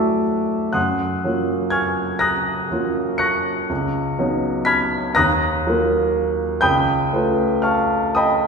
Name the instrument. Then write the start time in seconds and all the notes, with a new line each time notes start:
grand piano
Already playing: F#3 A3 E4 F#4 C#5 D5 E5 F#5 G#5 A5 B5 C#6 D6 E6
0.73 F#2 F#5 C6 D#6 F#6
1.24 F#3 A#3 C#4 F4
1.70 G#5 C#6 F6 G#6
2.19 A#5 D#6 F#6 A#6
2.71 F#3 A#3 C#4 F4
3.18 C#6 F#6 A#6 C#7
3.70 C#2
4.18 F#3 B3 C#4 D#4
4.65 B5 F6 G#6 B6
5.15 D#2 A#5 D#6 F#6 A#6
5.66 F#3 A#3 F4 A#4
6.61 C#2 G5 B5 D#6 G6
7.13 A3 C#4 F4 B4
7.62 F5 A5 C#6 F6
8.15 D#5 G5 B5 D#6